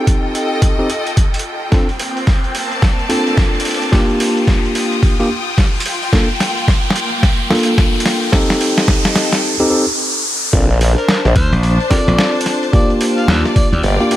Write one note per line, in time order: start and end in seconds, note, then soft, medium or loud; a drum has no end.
0.00 0.75 C4 loud
0.00 0.75 D#4 medium
0.00 2.61 F4 medium
0.00 0.75 G4 medium
0.00 0.75 A4 loud
0.00 1.72 A4 medium
0.00 2.60 G5 medium
0.00 riser medium
0.04 1.72 D#5 medium
0.04 kick medium
0.04 closed hi-hat medium
0.35 closed hi-hat medium
0.62 kick loud
0.62 closed hi-hat medium
0.79 0.88 C4 medium
0.79 0.88 D#4 medium
0.79 0.88 G4 medium
0.79 0.88 A4 loud
0.90 closed hi-hat medium
1.07 closed hi-hat soft
1.17 kick loud
1.17 closed hi-hat medium
1.34 closed hi-hat soft
1.39 closed hi-hat medium
1.72 1.86 C4 medium
1.72 4.82 C4 medium
1.72 1.86 D4 medium
1.72 1.86 F4 medium
1.72 1.86 A4 loud
1.72 kick medium
1.72 snare soft
1.72 open hi-hat soft
1.89 open hi-hat soft
1.98 4.75 A#3 medium
1.98 open hi-hat medium
2.17 open hi-hat soft
2.27 kick loud
2.27 snare soft
2.27 open hi-hat soft
2.44 open hi-hat soft
2.55 open hi-hat medium
2.59 4.81 A5 medium
2.72 3.93 D5 medium
2.72 open hi-hat soft
2.82 kick loud
2.82 snare medium
2.82 open hi-hat soft
2.99 open hi-hat soft
3.09 3.90 C4 medium
3.09 3.90 D4 medium
3.09 3.90 F4 medium
3.09 3.90 A4 loud
3.09 open hi-hat medium
3.27 open hi-hat soft
3.37 kick loud
3.37 snare medium
3.37 open hi-hat soft
3.55 open hi-hat soft
3.60 closed hi-hat medium
3.65 open hi-hat medium
3.71 open hi-hat medium
3.74 open hi-hat soft
3.82 open hi-hat soft
3.89 5.15 A#3 loud
3.89 5.15 D4 medium
3.89 5.15 F4 medium
3.89 9.43 F4 medium
3.89 5.15 G4 loud
3.89 kick loud
3.89 snare medium
3.89 open hi-hat soft
3.93 open hi-hat soft
4.10 open hi-hat soft
4.20 open hi-hat medium
4.37 open hi-hat soft
4.46 6.13 D#6 medium
4.46 kick loud
4.46 snare medium
4.46 open hi-hat soft
4.65 open hi-hat soft
4.70 9.43 G5 medium
4.75 open hi-hat medium
4.92 open hi-hat soft
5.03 kick loud
5.03 open hi-hat soft
5.20 5.28 A#3 medium
5.20 5.28 D4 medium
5.20 5.28 F4 medium
5.20 5.28 G4 loud
5.20 open hi-hat soft
5.58 kick loud
5.58 snare medium
5.58 open hi-hat soft
5.75 open hi-hat soft
5.80 closed hi-hat medium
5.86 open hi-hat medium
6.03 open hi-hat soft
6.13 6.27 A#3 medium
6.13 6.27 D4 medium
6.13 6.27 F4 medium
6.13 6.27 A4 loud
6.13 kick loud
6.13 snare medium
6.13 open hi-hat soft
6.30 open hi-hat soft
6.40 snare medium
6.40 open hi-hat medium
6.47 8.33 A#3 medium
6.58 open hi-hat soft
6.68 kick loud
6.68 snare medium
6.68 open hi-hat soft
6.85 open hi-hat soft
6.88 snare medium
6.88 open hi-hat soft
6.90 open hi-hat soft
6.93 open hi-hat soft
6.96 open hi-hat medium
7.04 open hi-hat soft
7.08 open hi-hat soft
7.23 kick loud
7.23 snare medium
7.23 open hi-hat soft
7.32 open hi-hat soft
7.50 8.30 A#3 medium
7.50 8.30 D4 medium
7.50 8.31 F4 medium
7.50 8.30 A4 loud
7.50 snare medium
7.50 open hi-hat soft
7.55 open hi-hat soft
7.59 open hi-hat medium
7.63 open hi-hat medium
7.68 open hi-hat soft
7.78 kick loud
7.78 snare medium
7.78 open hi-hat soft
7.95 open hi-hat soft
8.00 closed hi-hat medium
8.06 snare medium
8.06 open hi-hat medium
8.23 open hi-hat soft
8.32 9.56 C4 loud
8.32 9.56 D#4 medium
8.32 9.56 G4 medium
8.32 9.56 A4 loud
8.32 kick loud
8.32 snare loud
8.32 open hi-hat soft
8.50 snare medium
8.50 open hi-hat soft
8.61 open hi-hat medium
8.76 9.42 D#5 medium
8.76 snare medium
8.76 open hi-hat soft
8.87 9.43 A4 medium
8.87 kick loud
8.87 snare loud
8.87 open hi-hat soft
9.05 snare medium
9.15 snare loud
9.15 open hi-hat medium
9.33 snare medium
9.33 open hi-hat soft
9.60 9.68 C4 medium
9.60 9.69 D#4 medium
9.60 9.68 G4 medium
9.60 9.68 A4 loud
9.70 9.85 C4 medium
9.70 9.85 D#4 medium
9.70 9.85 G4 medium
9.70 9.85 A4 medium
10.53 10.95 A#1 loud
10.53 10.67 C4 medium
10.53 13.63 D4 medium
10.53 10.67 D4 medium
10.53 10.67 F4 medium
10.53 10.67 A4 loud
10.53 kick loud
10.53 open hi-hat soft
10.63 13.62 C5 medium
10.70 open hi-hat soft
10.81 open hi-hat medium
10.98 11.05 A#4 medium
10.98 open hi-hat soft
11.04 13.62 A5 medium
11.08 11.19 A#4 medium
11.08 snare loud
11.08 open hi-hat soft
11.25 11.34 A#1 loud
11.25 snare soft
11.25 open hi-hat soft
11.36 11.50 D2 medium
11.36 11.52 C5 medium
11.36 kick loud
11.36 open hi-hat medium
11.52 11.77 A#1 loud
11.52 open hi-hat soft
11.63 open hi-hat soft
11.81 open hi-hat soft
11.90 12.71 C4 medium
11.90 12.71 D4 medium
11.90 12.71 F4 medium
11.90 11.97 G4 medium
11.90 12.71 A4 loud
11.90 11.98 A#4 medium
11.90 12.35 D5 loud
11.90 kick medium
11.90 snare medium
11.90 open hi-hat medium
12.08 12.17 A#1 medium
12.08 open hi-hat soft
12.19 snare loud
12.19 open hi-hat soft
12.35 open hi-hat soft
12.41 closed hi-hat medium
12.46 snare soft
12.46 open hi-hat medium
12.63 open hi-hat soft
12.73 13.96 A#3 loud
12.73 13.96 D4 medium
12.73 14.16 F4 medium
12.73 13.96 F4 medium
12.73 13.96 G4 loud
12.73 12.90 D5 medium
12.73 kick loud
12.73 open hi-hat soft
12.90 14.16 D5 medium
12.90 open hi-hat soft
13.01 open hi-hat medium
13.18 13.28 F5 loud
13.18 open hi-hat soft
13.28 13.43 D#2 medium
13.28 snare loud
13.28 open hi-hat soft
13.46 snare soft
13.46 open hi-hat soft
13.55 13.67 D5 medium
13.55 kick loud
13.55 open hi-hat medium
13.72 13.82 D#2 loud
13.72 13.79 D5 medium
13.72 14.16 G5 medium
13.72 open hi-hat soft
13.83 13.98 G1 medium
13.83 open hi-hat soft
14.00 14.09 A#3 medium
14.00 14.09 D4 medium
14.00 14.09 F4 medium
14.00 14.09 G4 loud
14.00 open hi-hat soft
14.11 14.16 A#3 medium
14.11 14.16 D4 medium
14.11 14.16 F4 medium
14.11 14.16 G4 medium
14.11 open hi-hat medium